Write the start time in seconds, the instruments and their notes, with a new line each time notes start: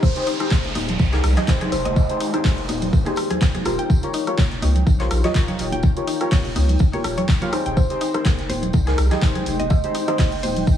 Already playing: synth stab D#4 G4 G#4 A#4, ambient pad D#5
0.03 ambient pad D#4, kalimba C5, kick, tambourine, downlifter
0.12 ambient pad G#3, synth stab D#4 G4
0.16 synth stab G#4 C5, closed hi-hat
0.27 synth arpeggio sound D#4, open hi-hat, tambourine
0.40 synth stab D#4 G4 G#4 C5, cross-stick, closed hi-hat
0.51 synth arpeggio sound G#4, kick, snare, clap, tambourine, high conga
0.64 analog synth bass F1, ambient pad G5, snare, closed hi-hat
0.75 analog synth bass D#1, synth arpeggio sound D#4, open hi-hat, tambourine, high conga
0.89 closed hi-hat, low conga
0.99 analog synth bass C2, kick, tambourine
1.12 synth stab D#4 G4 G#4 A#4, synth arpeggio sound G#4, snare, closed hi-hat
1.24 analog synth bass C2, cross-stick, open hi-hat, tambourine
1.36 synth stab D#4 G4 G#4 D#5, synth arpeggio sound G#4, snare, closed hi-hat, low conga
1.47 synth stab D#4 G4 G#4 C5, kick, snare, clap, tambourine
1.61 synth arpeggio sound G#4, closed hi-hat, low conga
1.72 analog synth bass F1, kalimba C5, open hi-hat, tambourine
1.85 analog synth bass F1, kalimba C5, synth arpeggio sound D#5, closed hi-hat, high conga
1.96 kalimba D#5, kick, tambourine
2.09 synth stab D#4 G4 G#4 C5, closed hi-hat
2.20 synth arpeggio sound D#4, open hi-hat, tambourine
2.33 synth stab D#4 G4 G#4 C5, cross-stick, closed hi-hat
2.44 synth arpeggio sound G#4, kick, snare, clap, open hi-hat, high conga
2.58 analog synth bass F1, closed hi-hat
2.69 analog synth bass D#1, synth arpeggio sound D#4, open hi-hat, tambourine, high conga
2.82 closed hi-hat, low conga
2.93 analog synth bass F1, kick, tambourine
3.06 synth stab D#4 G4 G#4 C5, synth arpeggio sound G#4, closed hi-hat, high conga
3.16 cross-stick, open hi-hat, tambourine
3.30 synth arpeggio sound G#4, closed hi-hat, low conga
3.41 kick, snare, clap, tambourine
3.54 synth arpeggio sound G#4, closed hi-hat, high conga, low conga
3.65 analog synth bass D#1, synth stab F4 G4 A#4 C5, cross-stick, open hi-hat, tambourine
3.79 synth arpeggio sound G5, closed hi-hat
3.90 ambient pad C#5, kick, tambourine
4.03 synth stab F4 G4 A#4 C#5, closed hi-hat
4.13 synth arpeggio sound D#4, open hi-hat, tambourine
4.27 synth stab F4 G4 A#4 C#5, cross-stick, closed hi-hat
4.38 synth arpeggio sound C#5, kick, snare, clap, tambourine, high conga
4.51 analog synth bass D#1, snare, closed hi-hat
4.62 analog synth bass C#2, synth arpeggio sound D#4, open hi-hat, tambourine, high conga
4.76 closed hi-hat, low conga
4.87 analog synth bass A#1, kick, tambourine
5.00 synth stab F4 G4 A#4 C5, synth arpeggio sound C#5, snare, closed hi-hat
5.11 analog synth bass A#1, cross-stick, open hi-hat, tambourine
5.24 synth stab F4 G4 A#4 D#5, synth arpeggio sound C#5, snare, closed hi-hat, low conga
5.34 synth stab F4 G4 A#4 C#5, kick, snare, clap, tambourine
5.48 synth arpeggio sound C#5, closed hi-hat, low conga
5.59 analog synth bass D#1, open hi-hat, tambourine
5.71 analog synth bass D#1, synth arpeggio sound G5, closed hi-hat, high conga
5.83 kick, tambourine
5.96 synth stab F4 G4 A#4 C#5, closed hi-hat
6.08 synth arpeggio sound D#4, open hi-hat, tambourine
6.21 synth stab F4 G4 A#4 C#5, cross-stick, closed hi-hat
6.31 synth arpeggio sound C#5, kick, snare, clap, open hi-hat, high conga
6.45 analog synth bass D#1, closed hi-hat
6.56 analog synth bass C#2, synth arpeggio sound D#4, open hi-hat, tambourine, high conga
6.69 closed hi-hat, low conga
6.79 analog synth bass D#1, kick, tambourine
6.93 synth stab F4 G4 A#4 C#5, synth arpeggio sound C#5, closed hi-hat, high conga
7.04 analog synth bass D#1, cross-stick, open hi-hat, tambourine
7.18 synth arpeggio sound C#5, closed hi-hat, low conga
7.29 kick, snare, clap, tambourine
7.41 synth stab F4 G4 A#4 F5, synth arpeggio sound C#5, closed hi-hat, high conga, low conga
7.52 synth stab D#4 G4 G#4 C5, cross-stick, open hi-hat, tambourine
7.66 analog synth bass D#1, synth arpeggio sound G5, closed hi-hat
7.77 kalimba C5, kick, tambourine
7.90 synth stab D#4 G4 G#4 C5, closed hi-hat
8.01 ambient pad G#3, synth arpeggio sound D#4, open hi-hat, tambourine
8.14 synth stab D#4 G4 G#4 C5, kalimba A#4, cross-stick, closed hi-hat
8.25 synth arpeggio sound G#4, kick, snare, clap, tambourine, high conga
8.38 analog synth bass F1, snare, closed hi-hat
8.49 analog synth bass D#1, synth arpeggio sound C5, open hi-hat, tambourine, high conga
8.62 closed hi-hat, low conga
8.73 analog synth bass C2, kick, tambourine
8.87 synth stab D#4 G4 G#4 A#4, synth arpeggio sound G#4, snare, closed hi-hat
8.98 analog synth bass C2, cross-stick, open hi-hat, tambourine
9.11 synth stab D#4 G4 G#4 D#5, synth arpeggio sound G#4, snare, closed hi-hat, low conga
9.22 synth stab D#4 G4 G#4 C5, kick, snare, clap, tambourine
9.35 synth arpeggio sound G#4, closed hi-hat, low conga
9.46 analog synth bass F1, open hi-hat, tambourine
9.60 analog synth bass F1, synth arpeggio sound D#5, closed hi-hat, high conga
9.70 kalimba D#5, kick, tambourine
9.83 synth stab D#4 G4 G#4 C5, closed hi-hat
9.94 synth arpeggio sound D#4, open hi-hat, tambourine
10.08 synth stab D#4 G4 G#4 C5, kalimba D#5, cross-stick, closed hi-hat
10.18 synth arpeggio sound G#4, kalimba D#5, kick, snare, clap, open hi-hat, high conga
10.32 analog synth bass F1, closed hi-hat
10.43 analog synth bass D#1, synth arpeggio sound C5, open hi-hat, tambourine, high conga
10.56 closed hi-hat, low conga
10.67 analog synth bass F1, kick, tambourine